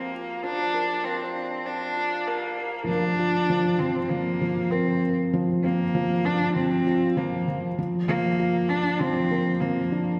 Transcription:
0.00 0.44 F3 medium
0.00 0.44 A#3 medium
0.00 1.36 D4 medium
0.00 0.11 F4 medium
0.43 0.72 F3 loud
0.43 1.06 D4 loud
0.74 0.91 A#3 medium
1.04 1.22 F3 loud
1.04 1.67 C4 medium
1.36 1.64 D4 medium
1.66 1.95 F3 medium
1.66 2.28 D4 loud
1.96 2.25 F4 medium
2.27 2.87 A#3 medium
2.27 2.56 A#3 loud
2.58 2.75 A#3 medium
2.88 3.17 F3 medium
2.88 3.80 D4 loud
3.19 3.36 F4 medium
3.50 3.79 F3 loud
3.79 3.98 F3 medium
3.79 4.11 C4 medium
4.10 4.40 F3 medium
4.10 4.73 A#3 medium
4.42 4.59 F3 medium
4.71 5.17 C4 medium
4.71 5.01 A#4 medium
5.33 5.62 F3 medium
5.64 6.27 A#3 loud
5.64 5.81 C4 medium
5.95 6.12 F3 loud
6.25 6.55 D4 loud
6.25 6.54 F4 medium
6.56 6.85 F3 medium
6.56 7.19 C4 loud
6.87 7.04 F4 medium
7.17 7.46 F3 medium
7.17 7.63 A#3 medium
7.48 7.65 F3 medium
7.79 8.07 F3 medium
8.08 8.26 F3 medium
8.08 8.71 A#3 loud
8.40 8.68 F4 medium
8.69 9.01 D4 loud
8.99 9.30 F3 loud
8.99 9.62 C4 loud
9.31 9.48 A#3 medium
9.60 9.79 F3 medium
9.60 10.07 A#3 medium
9.92 10.20 D4 medium

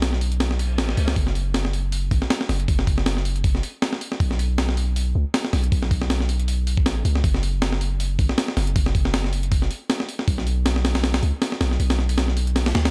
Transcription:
0.00 0.80 B1 loud
0.00 snare loud
0.00 open hi-hat medium
0.13 snare soft
0.21 open hi-hat medium
0.32 closed hi-hat soft
0.40 snare loud
0.40 open hi-hat medium
0.40 reverse cymbal medium
0.51 snare soft
0.59 open hi-hat medium
0.78 0.96 A1 medium
0.78 snare loud
0.78 open hi-hat medium
0.89 snare medium
0.97 1.15 C#2 loud
0.97 open hi-hat medium
1.08 snare loud
1.08 open hi-hat medium
1.16 2.10 F#1 loud
1.16 kick loud
1.16 open hi-hat medium
1.27 snare soft
1.35 open hi-hat medium
1.54 snare loud
1.54 open hi-hat medium
1.65 snare medium
1.73 open hi-hat medium
1.92 open hi-hat medium
2.11 2.21 G#1 medium
2.11 kick medium
2.11 open hi-hat medium
2.22 snare soft
2.30 snare loud
2.30 open hi-hat medium
2.41 snare medium
2.49 2.67 F#1 loud
2.49 snare medium
2.49 open hi-hat medium
2.60 closed hi-hat soft
2.68 3.62 F#1 loud
2.68 kick loud
2.68 open hi-hat medium
2.79 snare soft
2.87 kick medium
2.87 open hi-hat medium
2.98 snare soft
3.06 snare loud
3.06 open hi-hat medium
3.17 snare soft
3.25 open hi-hat medium
3.36 closed hi-hat soft
3.44 kick loud
3.44 open hi-hat medium
3.55 snare soft
3.63 open hi-hat medium
3.82 snare loud
3.82 open hi-hat medium
3.93 snare medium
4.01 open hi-hat medium
4.12 snare soft
4.20 5.14 B1 loud
4.20 kick loud
4.20 open hi-hat medium
4.31 snare soft
4.39 open hi-hat medium
4.58 snare loud
4.58 open hi-hat medium
4.69 snare medium
4.77 open hi-hat medium
4.96 open hi-hat medium
5.15 5.25 C#2 medium
5.34 snare loud
5.34 open hi-hat medium
5.45 snare medium
5.53 5.70 B1 loud
5.53 snare medium
5.53 open hi-hat medium
5.64 closed hi-hat soft
5.72 6.87 B1 loud
5.72 kick loud
5.72 open hi-hat medium
5.83 snare soft
5.91 kick medium
5.91 open hi-hat medium
6.01 snare soft
6.10 snare loud
6.10 open hi-hat medium
6.20 snare soft
6.29 open hi-hat medium
6.39 closed hi-hat soft
6.48 open hi-hat medium
6.67 open hi-hat medium
6.77 kick medium
6.86 7.03 A1 medium
6.86 snare loud
6.86 open hi-hat medium
7.05 7.22 C#2 loud
7.05 open hi-hat medium
7.15 snare soft
7.24 8.18 F#1 loud
7.24 kick loud
7.24 open hi-hat medium
7.34 snare soft
7.43 open hi-hat medium
7.62 snare loud
7.62 open hi-hat medium
7.72 snare medium
7.81 open hi-hat medium
8.00 open hi-hat medium
8.19 8.28 G#1 medium
8.19 kick medium
8.19 open hi-hat medium
8.29 snare medium
8.38 snare loud
8.38 open hi-hat medium
8.48 snare medium
8.57 8.74 F#1 loud
8.57 snare medium
8.57 open hi-hat medium
8.67 closed hi-hat soft
8.76 9.69 F#1 loud
8.76 kick loud
8.76 open hi-hat medium
8.86 snare soft
8.95 kick medium
8.95 open hi-hat medium
9.05 snare medium
9.14 snare loud
9.14 open hi-hat medium
9.24 snare soft
9.33 open hi-hat medium
9.43 closed hi-hat soft
9.52 kick loud
9.52 open hi-hat medium
9.62 snare soft
9.71 open hi-hat medium
9.90 snare loud
9.90 open hi-hat medium
10.00 snare medium
10.09 open hi-hat medium
10.19 snare soft
10.28 11.21 B1 loud
10.28 kick loud
10.28 open hi-hat medium
10.38 snare soft
10.47 open hi-hat medium
10.66 snare loud
10.66 open hi-hat medium
10.76 snare medium
10.85 snare loud
10.85 open hi-hat medium
10.95 snare loud
10.95 open hi-hat medium
11.04 snare loud
11.04 open hi-hat medium
11.14 snare loud
11.14 open hi-hat medium
11.23 11.32 C#2 loud
11.23 open hi-hat medium
11.42 snare loud
11.42 open hi-hat medium
11.52 snare medium
11.61 11.78 B1 loud
11.61 snare loud
11.61 open hi-hat medium
11.71 snare soft
11.80 12.73 B1 loud
11.80 open hi-hat medium
11.90 snare loud
11.90 open hi-hat medium
11.99 snare soft
12.09 open hi-hat medium
12.18 snare loud
12.18 open hi-hat medium
12.28 snare soft
12.37 open hi-hat medium
12.47 closed hi-hat soft
12.56 snare loud
12.56 open hi-hat medium
12.66 snare loud
12.66 open hi-hat medium
12.75 12.91 D2 loud
12.75 snare loud
12.75 open hi-hat medium
12.85 snare loud
12.85 open hi-hat medium

